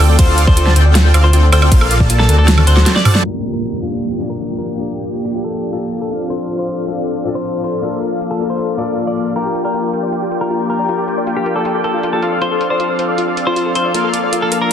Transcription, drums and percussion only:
0.19 kick, closed hi-hat, ride
0.38 closed hi-hat
0.47 kick
0.57 closed hi-hat
0.67 snare
0.76 closed hi-hat
0.95 snare, closed hi-hat
1.14 closed hi-hat, high woodblock
1.33 closed hi-hat
1.52 closed hi-hat, high woodblock
1.62 high woodblock
1.72 kick, closed hi-hat, ride
1.81 high woodblock
1.91 closed hi-hat
2.00 kick
2.10 closed hi-hat
2.20 snare
2.29 closed hi-hat
2.48 snare, closed hi-hat, high tom
2.58 high tom, high woodblock
2.67 closed hi-hat
2.77 snare
2.86 snare, closed hi-hat
2.96 snare
3.05 mid tom, open hi-hat, high woodblock
3.15 snare
3.24 closed hi-hat
3.63 closed hi-hat
4.01 closed hi-hat
4.20 closed hi-hat
4.39 closed hi-hat
4.58 closed hi-hat
4.77 closed hi-hat
4.96 closed hi-hat
5.16 closed hi-hat
5.35 closed hi-hat
5.54 closed hi-hat
5.73 closed hi-hat
5.92 closed hi-hat
6.11 closed hi-hat
6.30 closed hi-hat
6.49 closed hi-hat
6.68 closed hi-hat
6.88 closed hi-hat
7.07 closed hi-hat
7.26 closed hi-hat
7.45 closed hi-hat
7.64 closed hi-hat
7.83 closed hi-hat
8.02 closed hi-hat
8.21 closed hi-hat
8.40 closed hi-hat
8.59 closed hi-hat
8.79 closed hi-hat
8.98 closed hi-hat
9.17 closed hi-hat
9.36 closed hi-hat
9.55 closed hi-hat
9.74 closed hi-hat
9.93 closed hi-hat
10.12 closed hi-hat
10.31 closed hi-hat
10.51 closed hi-hat
10.70 closed hi-hat
10.89 closed hi-hat
11.08 closed hi-hat
11.27 closed hi-hat
11.46 closed hi-hat
11.65 closed hi-hat
11.84 closed hi-hat
12.03 closed hi-hat
12.22 closed hi-hat
12.42 closed hi-hat
12.61 closed hi-hat
12.80 closed hi-hat
12.99 closed hi-hat
13.18 closed hi-hat
13.37 closed hi-hat
13.56 closed hi-hat
13.75 closed hi-hat
13.94 closed hi-hat
14.14 closed hi-hat
14.33 closed hi-hat
14.52 closed hi-hat

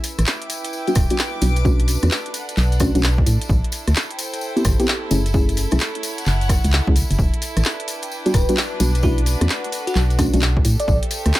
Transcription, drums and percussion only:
0.04 open hi-hat, tambourine
0.18 cross-stick, closed hi-hat, tambourine
0.26 clap, tambourine
0.42 closed hi-hat
0.50 open hi-hat, tambourine
0.64 closed hi-hat, tambourine
0.73 tambourine
0.87 closed hi-hat, tambourine
0.95 kick, cross-stick, open hi-hat, tambourine
1.10 closed hi-hat, tambourine
1.19 clap, tambourine
1.41 open hi-hat, tambourine
1.56 closed hi-hat, tambourine
1.65 kick, tambourine
1.80 closed hi-hat
1.88 open hi-hat, tambourine
2.02 cross-stick, closed hi-hat, tambourine
2.11 clap, tambourine
2.26 closed hi-hat
2.34 open hi-hat, tambourine
2.49 closed hi-hat, tambourine
2.57 clap, tambourine
2.72 closed hi-hat, tambourine
2.80 kick, cross-stick, open hi-hat, tambourine
2.95 closed hi-hat, tambourine
3.03 clap, tambourine
3.18 kick
3.26 open hi-hat, tambourine
3.41 closed hi-hat, tambourine
3.49 kick, tambourine
3.64 closed hi-hat
3.72 open hi-hat, tambourine
3.88 cross-stick, closed hi-hat, tambourine
3.95 clap, tambourine
4.11 closed hi-hat
4.19 open hi-hat, tambourine
4.34 closed hi-hat, tambourine
4.41 tambourine
4.57 closed hi-hat, tambourine
4.65 kick, cross-stick, open hi-hat, tambourine
4.80 closed hi-hat, tambourine
4.88 clap, tambourine
5.11 open hi-hat, tambourine
5.26 closed hi-hat, tambourine
5.34 kick, tambourine
5.49 closed hi-hat, tambourine
5.57 open hi-hat, tambourine
5.71 cross-stick, closed hi-hat, tambourine
5.80 clap, tambourine
5.95 closed hi-hat
6.03 open hi-hat, tambourine
6.18 closed hi-hat, tambourine
6.26 clap, tambourine
6.41 closed hi-hat, tambourine
6.49 kick, cross-stick, open hi-hat, tambourine
6.64 closed hi-hat, tambourine
6.73 clap, tambourine
6.87 kick
6.96 open hi-hat, tambourine
7.11 closed hi-hat, tambourine
7.19 kick, tambourine
7.34 closed hi-hat
7.42 open hi-hat, tambourine
7.57 cross-stick, closed hi-hat, tambourine
7.65 clap, tambourine
7.80 closed hi-hat
7.88 open hi-hat, tambourine
8.02 closed hi-hat, tambourine
8.12 tambourine
8.26 closed hi-hat, tambourine
8.34 kick, cross-stick, open hi-hat, tambourine
8.49 closed hi-hat, tambourine
8.57 clap, tambourine
8.80 open hi-hat, tambourine
8.95 closed hi-hat, tambourine
9.03 kick, tambourine
9.18 closed hi-hat
9.26 open hi-hat, tambourine
9.41 cross-stick, closed hi-hat, tambourine
9.49 clap, tambourine
9.64 closed hi-hat
9.72 open hi-hat, tambourine
9.87 closed hi-hat, tambourine
9.95 clap, tambourine
10.10 closed hi-hat, tambourine
10.19 kick, cross-stick, open hi-hat, tambourine
10.33 closed hi-hat, tambourine
10.42 clap, tambourine
10.57 kick
10.65 open hi-hat, tambourine
10.80 closed hi-hat, tambourine
10.88 kick, tambourine
11.03 closed hi-hat
11.11 open hi-hat, tambourine
11.26 cross-stick, closed hi-hat, tambourine
11.34 clap, tambourine

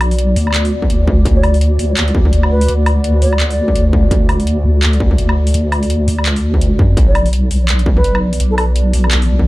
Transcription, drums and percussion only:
0.01 open hi-hat, low woodblock
0.11 open hi-hat
0.19 closed hi-hat
0.36 open hi-hat
0.47 low woodblock
0.51 clap, closed hi-hat, low woodblock
0.54 low woodblock
0.60 low woodblock
0.65 open hi-hat
0.82 kick
0.90 closed hi-hat
1.07 kick
1.25 kick, closed hi-hat
1.43 open hi-hat, low woodblock
1.54 open hi-hat
1.61 closed hi-hat
1.79 open hi-hat
1.97 clap, closed hi-hat
2.08 closed hi-hat
2.15 kick
2.25 kick
2.33 closed hi-hat
2.43 low woodblock
2.61 open hi-hat
2.68 closed hi-hat
2.86 open hi-hat, low woodblock
3.04 closed hi-hat
3.22 open hi-hat
3.33 low woodblock
3.40 clap, closed hi-hat
3.50 open hi-hat
3.68 kick
3.76 closed hi-hat
3.93 kick
4.11 kick, closed hi-hat
4.29 open hi-hat, low woodblock
4.40 open hi-hat
4.47 closed hi-hat
4.83 clap, closed hi-hat
4.93 closed hi-hat
5.00 kick
5.11 kick
5.18 closed hi-hat
5.29 low woodblock
5.47 open hi-hat
5.54 closed hi-hat
5.72 open hi-hat, low woodblock
5.83 open hi-hat
5.90 closed hi-hat
6.08 open hi-hat
6.19 low woodblock
6.26 clap, closed hi-hat
6.36 open hi-hat
6.54 kick
6.61 closed hi-hat
6.79 kick
6.97 kick, closed hi-hat
7.15 open hi-hat, low woodblock
7.26 open hi-hat
7.33 closed hi-hat
7.51 open hi-hat
7.69 clap, closed hi-hat
7.79 closed hi-hat
7.86 kick
7.97 kick
8.04 closed hi-hat
8.15 low woodblock
8.33 open hi-hat
8.40 closed hi-hat
8.58 open hi-hat, low woodblock
8.76 closed hi-hat
8.93 open hi-hat
9.04 low woodblock
9.11 clap, closed hi-hat
9.22 open hi-hat
9.39 kick

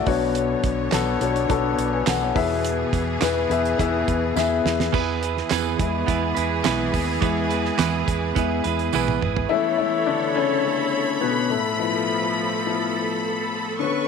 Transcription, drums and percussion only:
0.06 kick, open hi-hat
0.35 closed hi-hat
0.64 kick, closed hi-hat
0.92 snare, clap, closed hi-hat, tambourine
1.21 closed hi-hat
1.36 closed hi-hat
1.50 kick, closed hi-hat
1.79 closed hi-hat
2.07 snare, clap, closed hi-hat, tambourine
2.36 kick, open hi-hat
2.65 closed hi-hat
2.93 kick, closed hi-hat
3.21 snare, clap, closed hi-hat, tambourine
3.51 closed hi-hat
3.65 closed hi-hat
3.79 kick, closed hi-hat
4.08 kick, closed hi-hat
4.36 snare, tambourine
4.66 snare
4.80 snare
4.94 kick, crash
5.23 closed hi-hat
5.37 snare
5.50 snare, clap, closed hi-hat, tambourine
5.79 kick, closed hi-hat
6.08 kick, closed hi-hat
6.37 closed hi-hat
6.64 snare, clap, closed hi-hat, tambourine
6.94 kick, open hi-hat
7.22 kick, closed hi-hat
7.51 closed hi-hat
7.65 snare
7.79 snare, clap, closed hi-hat, tambourine
8.08 kick, closed hi-hat
8.36 kick, closed hi-hat
8.64 closed hi-hat
8.79 closed hi-hat
8.93 high tom, tambourine
9.08 mid tom
9.22 mid tom
9.36 floor tom

